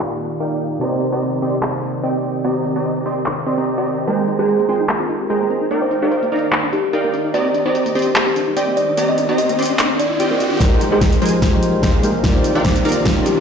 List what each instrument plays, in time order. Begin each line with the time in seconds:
Already playing: tine electric piano D#3 D#4 F4 G4 D5, ambient pad D#3 A#3 G5
0.20 closed hi-hat
0.40 supersaw synth D#4 A#4 D5 F5 G5, closed hi-hat
0.61 closed hi-hat
0.79 tine electric piano C3 C4 D#4 A#4 C5, ambient pad D#3 C4 A#4, supersaw synth C4 G4 D5 D#5 A#5, closed hi-hat
1.01 closed hi-hat
1.12 supersaw synth C4 G4 D5 D#5 A#5
1.22 closed hi-hat
1.33 closed hi-hat
1.42 supersaw synth C4 G4 D5 D#5 C6, closed hi-hat
1.46 closed hi-hat
1.49 closed hi-hat
1.63 clap, closed hi-hat
1.83 closed hi-hat
2.03 supersaw synth C4 G4 D5 D#5 G5, closed hi-hat
2.24 closed hi-hat
2.44 supersaw synth C4 G4 D5 D#5 A#5, closed hi-hat
2.65 closed hi-hat
2.76 supersaw synth C4 G4 D5 D#5 A#5
2.85 closed hi-hat
2.96 closed hi-hat
3.06 supersaw synth C4 G4 D5 D#5 C6, closed hi-hat
3.09 closed hi-hat
3.12 closed hi-hat
3.26 clap, closed hi-hat
3.46 supersaw synth C4 G4 D5 D#5 C6, closed hi-hat
3.58 supersaw synth C4 G4 D5 D#5 A#5
3.67 closed hi-hat
3.78 supersaw synth C4 G4 D5 D#5 A#5
3.87 closed hi-hat
4.07 supersaw synth G#3 G#4 C5 G5 A#5, ambient pad G#3 C4 G5, synth arpeggio sound A#3, kalimba A#4, closed hi-hat
4.19 synth arpeggio sound C4
4.28 synth arpeggio sound D#4, closed hi-hat
4.39 supersaw synth G#3 G#4 C5 G5 A#5, synth arpeggio sound G4, kalimba G#4
4.48 synth arpeggio sound G#4, closed hi-hat
4.60 synth arpeggio sound A#3, closed hi-hat
4.69 supersaw synth G#3 G#4 C5 G5 C6, synth arpeggio sound C4, kalimba F4, closed hi-hat
4.73 closed hi-hat
4.76 closed hi-hat
4.80 synth arpeggio sound D#4
4.89 synth arpeggio sound A#3, clap, closed hi-hat
5.00 synth arpeggio sound C4, kalimba F4
5.10 synth arpeggio sound D#4, closed hi-hat
5.21 synth arpeggio sound G4
5.30 supersaw synth G#3 G#4 C5 G5 A#5, synth arpeggio sound G#4, kalimba A#4, closed hi-hat
5.41 synth arpeggio sound A#3
5.50 synth arpeggio sound C4, kalimba A#4, closed hi-hat
5.61 synth arpeggio sound D#4
5.71 ambient pad D#3 G4 D5, synth arpeggio sound A#3, supersaw synth D#4 A#4 D5 F5 G5, closed hi-hat
5.82 synth arpeggio sound D4, kalimba C5
5.91 synth arpeggio sound D#4, closed hi-hat
6.02 supersaw synth D#4 A#4 D5 F5 G5, synth arpeggio sound G4
6.11 synth arpeggio sound A#4, kalimba C5, closed hi-hat
6.23 synth arpeggio sound A#3, closed hi-hat
6.32 synth arpeggio sound D4, supersaw synth D#4 A#4 D5 F5 A#5, closed hi-hat
6.36 closed hi-hat
6.39 closed hi-hat
6.43 synth arpeggio sound D#4
6.52 synth arpeggio sound A#3, clap, closed hi-hat
6.63 synth arpeggio sound D4
6.73 synth arpeggio sound D#4, kalimba G4, closed hi-hat
6.84 synth arpeggio sound G4
6.93 supersaw synth D#4 A#4 D5 F5 G5, synth arpeggio sound A#4, closed hi-hat
7.04 synth arpeggio sound A#3, kalimba A#4
7.14 synth arpeggio sound D4, closed hi-hat
7.25 synth arpeggio sound D#4
7.34 ambient pad D#3 C4 D#4, synth arpeggio sound A#3, supersaw synth C4 G4 D5 D#5 A#5, kalimba D5, closed hi-hat, riser
7.45 synth arpeggio sound C4
7.54 synth arpeggio sound D4, closed hi-hat
7.65 supersaw synth C4 G4 D5 D#5 A#5, synth arpeggio sound D#4, kalimba C5
7.75 synth arpeggio sound G4, closed hi-hat
7.86 synth arpeggio sound A#3, closed hi-hat
7.95 synth arpeggio sound C4, supersaw synth C4 G4 D5 D#5 C6, kalimba G4, closed hi-hat
7.99 closed hi-hat
8.02 closed hi-hat
8.06 synth arpeggio sound D4
8.16 synth arpeggio sound A#3, clap, closed hi-hat
8.27 synth arpeggio sound C4, kalimba G4
8.36 synth arpeggio sound D4, closed hi-hat
8.47 synth arpeggio sound D#4
8.57 supersaw synth C4 G4 D5 D#5 G5, synth arpeggio sound G4, kalimba D5, closed hi-hat
8.68 synth arpeggio sound A#3
8.77 synth arpeggio sound C4, kalimba D5, closed hi-hat
8.88 synth arpeggio sound D4
8.97 synth arpeggio sound A#3, supersaw synth C4 G4 D5 D#5 A#5, closed hi-hat
9.08 synth arpeggio sound C4, kalimba D#5
9.18 synth arpeggio sound D4, closed hi-hat
9.29 supersaw synth C4 G4 D5 D#5 A#5, synth arpeggio sound D#4
9.38 synth arpeggio sound G4, kalimba D#5, closed hi-hat
9.49 synth arpeggio sound A#3, closed hi-hat
9.59 synth arpeggio sound C4, supersaw synth C4 G4 D5 D#5 C6, closed hi-hat
9.63 closed hi-hat
9.66 closed hi-hat
9.70 synth arpeggio sound D4
9.79 synth arpeggio sound A#3, clap, closed hi-hat
9.90 synth arpeggio sound C4
9.99 synth arpeggio sound D4, kalimba D5, closed hi-hat
10.11 synth arpeggio sound D#4
10.20 supersaw synth C4 G4 D5 D#5 G5, synth arpeggio sound G4, closed hi-hat
10.31 synth arpeggio sound A#3, kalimba A#4
10.40 synth arpeggio sound C4, closed hi-hat
10.51 synth arpeggio sound D4
10.60 ambient pad C3 A#3 G#4 G5, tine electric piano G#3 D#4 G4 A#4 C5, supersaw synth G#3 G#4 A#4 C5 G5, kalimba A#3 A#4, kick, snare, closed hi-hat, riser
10.81 closed hi-hat
10.91 tine electric piano G#3 D#4 G4 A#4 C5, supersaw synth G#3 G#4 A#4 C5 G5, kalimba G#3 G#4
11.01 kick, snare, closed hi-hat
11.13 closed hi-hat
11.21 kalimba F3 F4, tine electric piano G#3 D#4 G4 A#4 C5, supersaw synth G#3 G#4 A#4 C5 G#5, closed hi-hat
11.26 closed hi-hat
11.29 closed hi-hat
11.42 kick, snare, closed hi-hat
11.52 kalimba F3 F4, tine electric piano G#3 D#4 G4 A#4 C5
11.63 closed hi-hat
11.82 tine electric piano G#3 D#4 G4 A#4 C5, supersaw synth G#3 G#4 A#4 C5 F5, kalimba A#3 A#4, kick, snare, closed hi-hat
12.02 tine electric piano G#3 D#4 G4 A#4 C5, kalimba A#3 A#4, closed hi-hat
12.23 tine electric piano D#3 D#4 F4 G4 D5, ambient pad D#3 D5, supersaw synth D#4 A#4 D5 F5 G5, kick, snare, closed hi-hat
12.35 kalimba C4 C5
12.44 closed hi-hat
12.54 tine electric piano D#3 D#4 F4 G4 D5, supersaw synth D#4 A#4 D5 F5 G5
12.65 kalimba C4 C5, kick, snare, closed hi-hat
12.76 closed hi-hat
12.84 tine electric piano D#3 D#4 F4 G4 D5, supersaw synth D#4 A#4 D5 F5 A#5, closed hi-hat
12.89 closed hi-hat
12.92 closed hi-hat
13.05 kick, snare, closed hi-hat
13.15 tine electric piano D#3 D#4 F4 G4 D5
13.26 kalimba G3 G4, closed hi-hat